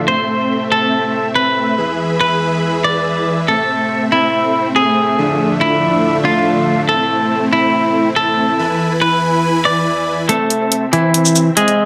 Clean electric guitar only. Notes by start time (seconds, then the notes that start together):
0.08 C5
0.72 A4
1.35 B4
2.21 B4
2.84 D5
3.48 A4
4.12 E4
4.76 G#4
5.61 E4
6.25 F4
6.89 A4
7.53 E4
8.16 A4
9.01 B4
9.65 D5
10.29 A3 A4
10.93 E3 E4
11.57 G#3 G#4